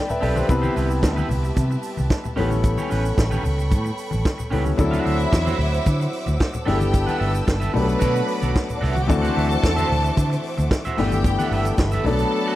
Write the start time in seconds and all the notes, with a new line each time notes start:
Already playing: G3 B3 C4 E4 A4 D5 G5 A5 B5
0.08 B4 E5, muted clean electric guitar stroke, muted conga, low conga, shaker
0.21 B1 C4 G4 A4 B4 D5, open hi-hat, low conga
0.36 C4 G4 B4 C5, high conga, shaker
0.47 C2 G3 B3 C4 E4 G4 B4 E5, muted clean electric guitar stroke, kick, closed hi-hat, muted conga, shaker
0.62 E4 G4 C5, muted conga, high conga, shaker
0.75 C2 E4 G4 B4, open hi-hat, shaker
0.89 muted clean electric guitar stroke, shaker
1.02 D2, muted clean electric guitar stroke, kick, snare, closed hi-hat, shaker
1.16 E4 G4 B4, muted conga, high conga, shaker
1.28 C2, muted clean electric guitar stroke, open hi-hat, low conga, shaker
1.43 muted clean electric guitar stroke, shaker
1.56 C3, muted clean electric guitar stroke, kick, closed hi-hat, high conga, shaker
1.71 muted clean electric guitar stroke, muted conga, shaker
1.83 open hi-hat, shaker
1.97 C2, muted clean electric guitar stroke, high conga, shaker
2.10 kick, snare, closed hi-hat, muted conga, shaker
2.24 muted clean electric guitar stroke, muted conga, low conga, shaker
2.36 A1 G3 B3 C#4 E4 G4 A4 B4 G5 B5 C#6, open hi-hat, low conga
2.50 muted clean electric guitar stroke, high conga, shaker
2.63 muted clean electric guitar stroke, kick, closed hi-hat, shaker
2.78 C#4 G4 C#5, high conga, shaker
2.90 A1 C#4 G4 B4, open hi-hat, shaker
3.04 muted clean electric guitar stroke, shaker
3.16 A1, muted clean electric guitar stroke, kick, snare, closed hi-hat, muted conga, shaker
3.31 C#4 G4 B4, muted conga, high conga, shaker
3.43 C#2, muted clean electric guitar stroke, open hi-hat, low conga, shaker
3.58 muted clean electric guitar stroke, shaker
3.71 A2, muted clean electric guitar stroke, kick, closed hi-hat, high conga, shaker
3.85 muted clean electric guitar stroke, muted conga, shaker
3.97 open hi-hat, shaker
4.11 A1, muted clean electric guitar stroke, high conga, shaker
4.25 kick, snare, closed hi-hat, shaker
4.38 muted clean electric guitar stroke, muted conga, low conga, shaker
4.50 C#2 G3 B3 C#4 E4 G4 A4 B4, open hi-hat, low conga
4.64 muted clean electric guitar stroke, high conga, shaker
4.76 D2 F#3 C4 D4 E4 C5 E5 F#5 D6 E6, muted clean electric guitar stroke, kick, closed hi-hat, shaker
4.80 A4
4.91 F#4 C5 F#5, closed hi-hat, high conga, shaker
5.04 D2 F#4 C5 E5, open hi-hat
5.18 muted clean electric guitar stroke, closed hi-hat, shaker
5.31 E2, muted clean electric guitar stroke, kick, snare, shaker
5.45 F#4 C5 E5, closed hi-hat, high conga, shaker
5.58 D2, muted clean electric guitar stroke, open hi-hat, low conga
5.72 muted clean electric guitar stroke, closed hi-hat, shaker
5.85 D3, muted clean electric guitar stroke, kick, closed hi-hat, high conga, shaker
6.00 muted clean electric guitar stroke, closed hi-hat, shaker
6.13 open hi-hat
6.26 D2, muted clean electric guitar stroke, closed hi-hat, high conga, shaker
6.40 kick, snare, muted conga, shaker
6.54 muted clean electric guitar stroke, closed hi-hat, low conga, shaker
6.65 G1 G3 B3 D4 E4 G4 G#4 A4 B4 E5 G5 A5 E6, snare, open hi-hat, low conga
6.75 A4
6.80 muted clean electric guitar stroke, closed hi-hat, high conga, shaker
6.92 muted clean electric guitar stroke, kick, closed hi-hat, shaker
7.06 A4 B4 F#5, closed hi-hat, muted conga, high conga, shaker
7.19 G1 A4 B4 E5, open hi-hat
7.34 muted clean electric guitar stroke, closed hi-hat, shaker
7.47 G1, muted clean electric guitar stroke, kick, snare, muted conga, shaker
7.60 A4 B4 E5, closed hi-hat, muted conga, high conga, shaker
7.73 B1 F#3 A3 B3 D4 G4 B4 F#5 B5 D6, muted clean electric guitar stroke, open hi-hat, low conga
7.82 A4
7.87 muted clean electric guitar stroke, closed hi-hat, shaker
7.99 B2 F#4 A4 D5, kick, closed hi-hat, muted conga, high conga, shaker
8.14 muted clean electric guitar stroke, closed hi-hat, muted conga, shaker
8.27 muted clean electric guitar stroke, open hi-hat
8.41 B1 F#4 A4 D5, closed hi-hat, high conga, shaker
8.55 kick, snare, muted conga, shaker
8.68 muted clean electric guitar stroke, closed hi-hat, muted conga, low conga, shaker
8.74 D4 D5
8.81 C2 E4 F#4 A4 D5 E5, snare, open hi-hat, low conga
8.92 F#4 F#5, muted clean electric guitar stroke, high conga
8.96 closed hi-hat, shaker
9.01 G4 G5
9.07 D2 E3 A3 C4 D4 F#4 A4 C5 E5 A5, muted clean electric guitar stroke, kick, closed hi-hat, shaker
9.22 F#4 C5 F#5, closed hi-hat, muted conga, high conga, shaker
9.35 D2 F#4 C5 E5, open hi-hat
9.49 muted clean electric guitar stroke, closed hi-hat, shaker
9.62 E2, muted clean electric guitar stroke, kick, snare, shaker
9.76 F#4 C5 E5, closed hi-hat, high conga, shaker
9.89 D2, muted clean electric guitar stroke, open hi-hat, low conga
10.03 muted clean electric guitar stroke, closed hi-hat, shaker
10.16 D3, muted clean electric guitar stroke, kick, closed hi-hat, high conga, shaker
10.30 muted clean electric guitar stroke, closed hi-hat, muted conga, shaker
10.43 open hi-hat
10.58 D2, muted clean electric guitar stroke, closed hi-hat, high conga, shaker
10.71 muted clean electric guitar stroke, kick, snare, muted conga, shaker
10.84 F#4 C5 E5, closed hi-hat, muted conga, low conga, shaker
10.97 G1 E3 A3 B3 D4 G4 A4 B4 E5 G5 B5, snare, open hi-hat, low conga
11.11 muted clean electric guitar stroke, closed hi-hat, high conga, shaker
11.24 muted clean electric guitar stroke, kick, closed hi-hat, muted conga, shaker
11.39 A4 B4 F#5, closed hi-hat, high conga, shaker
11.51 G1 A4 B4 E5, open hi-hat
11.65 muted clean electric guitar stroke, closed hi-hat, shaker
11.78 G1, muted clean electric guitar stroke, kick, snare, muted conga, shaker
11.92 A4 B4 E5, closed hi-hat, muted conga, high conga, shaker
12.04 B1 F#3 A3 B3 D4 A4 D5 F#5 A5, muted clean electric guitar stroke, open hi-hat, low conga
12.19 muted clean electric guitar stroke, closed hi-hat, shaker
12.31 muted clean electric guitar stroke
12.46 F#4 A4 D5